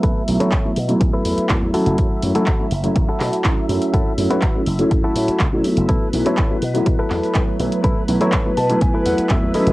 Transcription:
<<
  \new Staff \with { instrumentName = "String machine" } { \time 4/4 \key b \dorian \tempo 4 = 123 e''1~ | e''1~ | e''1 | b'1~ |
b'1 | }
  \new Staff \with { instrumentName = "Clean electric guitar" } { \time 4/4 \key b \dorian << { r1 | r1 | r1 | r1 |
r4. a''8 gis''8 fis''8 e''8 dis''8 | } \\ { <e' a' b'>8 r16 <e' a' cis''>8. r8. <e' a' b'>8. r8 <e' fis' a'>8~ | <e' fis' a'>8 r16 <e' fis' a'>8. r8. <e' fis' a'>8. r4 | <e' fis' a'>8 r16 <e' fis' b'>8. r8. <e' fis' a'>8. r4 | <e' a' b'>8 r16 <e' a' cis''>8. r8. <e' a' b'>8. r4 |
<e' a' b'>8 r16 <e' a' cis''>8. r8. <e' a' b'>8. r8 <e' fis' a'>8 | } >> }
  \new Staff \with { instrumentName = "Grand piano" } { \time 4/4 \key b \dorian <fis a b e'>8 <fis a b e'>16 <fis a b e'>16 r16 <fis a b e'>16 r16 <fis a b e'>4~ <fis a b e'>16 <fis a b e'>8 <fis a cis' e'>8~ | <fis a cis' e'>8 <fis a cis' e'>16 <fis a cis' e'>16 r16 <fis a cis' e'>16 r16 <fis a cis' e'>4~ <fis a cis' e'>16 <fis a cis' e'>8 <fis a cis' e'>8~ | <fis a cis' e'>8 <fis a cis' e'>16 <fis a cis' e'>16 r16 <fis a cis' e'>16 r16 <fis a cis' e'>4~ <fis a cis' e'>16 r16 <fis a cis' e'>16 <fis a b e'>8~ | <fis a b e'>8 <fis a b e'>16 <fis a b e'>16 r16 <fis a b e'>16 r16 <fis a b e'>4~ <fis a b e'>16 <fis a b e'>8 <fis a b e'>8~ |
<fis a b e'>8 <fis a b e'>16 <fis a b e'>16 r16 <fis a b e'>16 r16 <fis a b e'>4~ <fis a b e'>16 <fis a b e'>8 <fis a cis' e'>8 | }
  \new Staff \with { instrumentName = "Slap bass" } { \clef bass \time 4/4 \key b \dorian b,,16 r16 b,,16 r8. b,16 r16 b,,16 r16 e,16 r16 fis,16 e,16 r16 fis,,16 | fis,16 r16 fis,16 r8. fis,,16 r16 fis,,16 r16 b,16 r8. fis,16 r16 | fis,16 r16 fis,16 r8. fis,,16 r16 fis,16 r16 a,16 r16 cis,16 b,16 r16 fis,,16 | b,,16 r16 b,,16 r8. b,16 r16 b,16 r16 e,16 r8. b,,16 r16 |
b,,16 r16 b,,16 r8. b,16 r16 b,,16 r16 e,16 r16 fis,16 e,16 r16 fis,,16 | }
  \new DrumStaff \with { instrumentName = "Drums" } \drummode { \time 4/4 <hh bd>8 hho16 hh16 <hc hh bd>8 hho16 hh16 <hh bd>8 hho16 hh16 <hc hh bd>8 hho16 hh16 | <hh bd>8 hho16 hh16 <hc hh bd>8 hho16 hh16 <hh bd>8 <hc hho>16 hh16 <hc hh bd>8 hho16 hh16 | <hh bd>8 hho16 hh16 <hc hh bd>8 hho16 hh16 <hh bd>8 hho16 hh16 <hc hh bd>8 hho16 hh16 | <hh bd>8 hho16 hh16 <hc hh bd>8 hho16 hh16 <hh bd>8 <hc hho>16 hh16 <hc hh bd>8 hho16 hh16 |
<hh bd>8 hho16 hh16 <hc hh bd>8 hho16 hh16 <hh bd>8 hho16 hh16 <hc hh bd>8 hho16 hh16 | }
>>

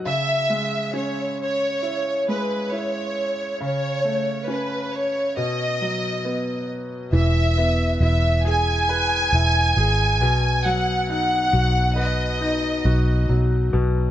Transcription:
<<
  \new Staff \with { instrumentName = "Violin section" } { \time 4/4 \key e \major \tempo 4 = 68 e''4 cis''8 cis''4 b'8 cis''4 | cis''4 b'8 cis''8 dis''4. r8 | e''4 e''8 gis''2~ gis''8 | fis''8 fis''4 dis''4. r4 | }
  \new Staff \with { instrumentName = "Grand piano" } { \time 4/4 \key e \major cis8 gis8 cis'4 e'8 gis8 e'4 | cis8 a8 cis'4 b,8 fis8 b4 | e8 b8 e'8 gis'8 b'8 e'8 gis'8 b,8 | fis8 dis'8 fis'8 b'8 dis'8 fis'8 fis8 b,8 | }
  \new Staff \with { instrumentName = "Fingered electric bass" } { \clef bass \time 4/4 \key e \major r1 | r1 | e,,4 e,,4. e,,8 gis,,8 b,,8~ | b,,4 b,,4. b,,8 b,,8 b,,8 | }
>>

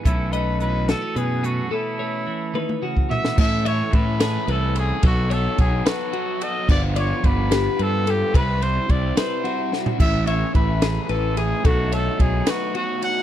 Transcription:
<<
  \new Staff \with { instrumentName = "Clean electric guitar" } { \time 6/8 \key b \mixolydian \tempo 4. = 73 r8 dis''4 fis'8 b'8 gis'8 | a'8 cis''4 b'8 fis'4 | r8 e''4 gis'8 b'8 gis'8 | a'8 cis''4 b'8 fis'4 |
r8 d''4 g'8 b'8 a'8 | b'8 c''4 b'8 fis'4 | r8 e''4 gis'8 b'8 gis'8 | a'8 cis''4 b'8 fis'4 | }
  \new Staff \with { instrumentName = "Trumpet" } { \time 6/8 \key b \mixolydian e'8 b'8 b'8 a'8 gis'8 fis'8 | e'2 r8 e''8 | e''8 cis''8 b'4 a'8 gis'8 | fis'8 a'8 gis'8 fis'4 dis''8 |
d''8 cis''8 b'4 a'8 g'8 | b'8 c''8 d''8 c''4 r8 | e''8 cis''8 b'8.~ b'32 b'32 a'8 gis'8 | fis'8 a'8 gis'8 fis'8 fis'8 fis''8 | }
  \new Staff \with { instrumentName = "Overdriven electric guitar" } { \time 6/8 \key b \mixolydian r2. | r2. | <a cis' e' a'>8 <a cis' e' a'>8 <a cis' e' a'>8 <a cis' e' a'>8 <a cis' e' a'>8 <a cis' e' a'>8 | <fis b dis' a'>8 <fis b dis' a'>8 <fis b dis' a'>8 <fis b dis' a'>8 <fis b dis' a'>8 <fis b dis' a'>8 |
<d f b f'>8 <d f b f'>8 <d f b f'>8 <d f b f'>8 <d f b f'>8 <d f b f'>8 | <c g c' e'>8 <c g c' e'>8 <c g c' e'>8 <c g c' e'>8 <c g c' e'>8 <c g c' e'>8 | <e a cis' e'>8 <e a cis' e'>8 <e a cis' e'>8 <e a cis' e'>8 <e a cis' e'>8 <e a cis' e'>8 | <b, fis a dis'>8 <b, fis a dis'>8 <b, fis a dis'>8 <b, fis a dis'>8 <b, fis a dis'>8 <b, fis a dis'>8 | }
  \new Staff \with { instrumentName = "Clean electric guitar" } { \clef bass \time 6/8 \key b \mixolydian << { <a cis'>8 a4 b16 cis'8. a8 | <a cis'>8 a2~ a8~ | a2. | r2. |
r2. | r2. | r2. | r2. | } \\ { <b, e>4 e4 fis,4 | b,4 e8 dis8 cis8 b,8 | r2. | r2. |
r2. | r2. | r2. | r2. | } >> }
  \new Staff \with { instrumentName = "Fingered electric bass" } { \clef bass \time 6/8 \key b \mixolydian b,,2 b,4 | r2. | a,4 a,4 c,4 | b,,4 b,,8 r4. |
g,,4 g,,4 g,4 | c,4 c,8 r4. | a,,4 a,,4 a,,4 | b,,4 b,,8 r4. | }
  \new DrumStaff \with { instrumentName = "Drums" } \drummode { \time 6/8 <hh bd>8 hh8 hh8 <hh sn>8 hh8 hh8 | r4. tommh16 tommh8 bd16 tomfh16 sn16 | <cymc bd>8 cymr8 <bd cymr>8 <cymr sn>8 cymr8 cymr8 | <bd cymr>8 cymr8 <bd cymr>8 <cymr sn>8 cymr8 cymr8 |
<cymc bd>8 cymr8 <bd cymr>8 <cymr sn>8 cymr8 cymr8 | <bd cymr>8 cymr8 <bd cymr>8 <cymr sn>8 cymr8 sn16 tomfh16 | <cymc bd>8 cymr8 <bd cymr>8 <cymr sn>8 cymr8 cymr8 | <bd cymr>8 cymr8 <bd cymr>8 <cymr sn>8 cymr8 cymr8 | }
>>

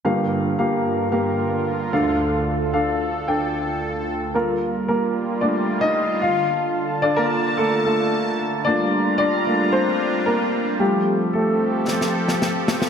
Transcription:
<<
  \new Staff \with { instrumentName = "Grand piano" } { \time 4/4 \key g \minor \tempo 4 = 112 <bes g' f''>4 <bes g' f''>4 <bes g' f''>4. <d' a' f''>8~ | <d' a' f''>4 <d' a' f''>4 <d' a' g''>4. r8 | bes'4 <bes bes'>4 <d' d''>8. <ees' ees''>8. <f' f''>8~ | <f' f''>8 r8 d''16 <bes bes'>8. <a a'>8 a'4 r8 |
<d' d''>4 <d' d''>4 <c' c''>4 <bes bes'>4 | g'4 <a a'>4. r4. | }
  \new Staff \with { instrumentName = "Grand piano" } { \time 4/4 \key g \minor <g,, g,>2.~ <g,, g,>8 <d, d>8~ | <d, d>2.~ <d, d>8 r8 | <bes f' a'>8 r4. <a bes f'>8 r4. | r4 <d' f' a'>4. <a d' f'>8 r4 |
<a bes f'>8 r4 <a bes f'>8 r2 | <g a f'>8 r2. r8 | }
  \new Staff \with { instrumentName = "Analog synth pad" } { \time 4/4 \key g \minor << { <g, bes'>2.~ <g, bes'>8 <d, a'>8~ | <d, a'>1 | <g bes>2.~ <g bes>8 <d a''>8~ | <d a''>1 |
<g bes''>1 | <f a'>1 | } \\ { <d f'>1~ | <d f'>1 | f'1~ | f'1 |
<d' f'>1 | <c' g'>1 | } >> }
  \new DrumStaff \with { instrumentName = "Drums" } \drummode { \time 4/4 r4 r4 r4 r4 | r4 r4 r4 r4 | r4 r4 r4 r4 | r4 r4 r4 r4 |
r4 r4 r4 r4 | r4 r4 sn16 sn8 sn16 sn8 sn16 sn16 | }
>>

